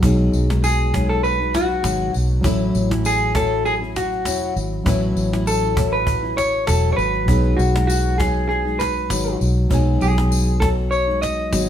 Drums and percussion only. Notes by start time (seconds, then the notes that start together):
0.03 cajon bass, tambourine
0.18 cajon slap
0.33 cajon slap, tambourine
0.50 cajon slap
0.63 cajon slap, tambourine
0.79 cajon slap
0.94 cajon bass, cajon slap
1.12 cajon slap
1.24 cajon slap, tambourine
1.42 cajon slap
1.54 cajon slap, tambourine
1.71 cajon slap
1.84 cajon slap, tambourine
2.01 cajon slap
2.14 cajon slap, tambourine
2.31 cajon slap
2.44 cajon bass, tambourine
2.60 cajon slap
2.74 cajon slap, tambourine
2.91 cajon slap
3.04 cajon slap, tambourine
3.20 cajon slap
3.35 cajon bass, cajon slap, tambourine
3.53 cajon slap
3.65 cajon slap, tambourine
3.83 cajon slap
3.96 cajon slap, tambourine
4.13 cajon slap
4.25 cajon slap, tambourine
4.43 cajon slap
4.57 cajon slap, tambourine
4.73 cajon slap
4.86 cajon bass, tambourine
5.02 cajon slap
5.17 cajon slap, tambourine
5.33 cajon slap
5.46 cajon slap, tambourine
5.62 cajon slap
5.77 cajon bass, cajon slap, tambourine
5.94 cajon slap
6.07 cajon bass, tambourine
6.25 cajon slap
6.38 cajon slap, tambourine
6.55 cajon slap
6.67 cajon slap, tambourine
6.84 cajon slap
6.98 cajon slap, tambourine
7.15 cajon slap
7.28 cajon bass, tambourine
7.44 cajon slap
7.59 cajon slap, tambourine
7.76 cajon slap
7.88 cajon slap, tambourine
8.05 cajon slap
8.20 cajon bass, cajon slap, tambourine
8.38 cajon slap
8.50 cajon slap
8.68 cajon slap
8.80 cajon slap, tambourine
8.98 cajon slap
9.10 cajon slap, tambourine
9.27 cajon slap
9.41 cajon slap, tambourine
9.58 cajon slap
9.71 cajon bass, tambourine
9.86 cajon slap
10.01 cajon slap, tambourine
10.18 cajon slap
10.31 cajon slap, tambourine
10.47 cajon slap
10.62 cajon bass, cajon slap
10.80 cajon slap
10.92 cajon slap, tambourine
11.10 cajon slap
11.22 cajon slap, tambourine
11.40 cajon slap
11.53 cajon slap, tambourine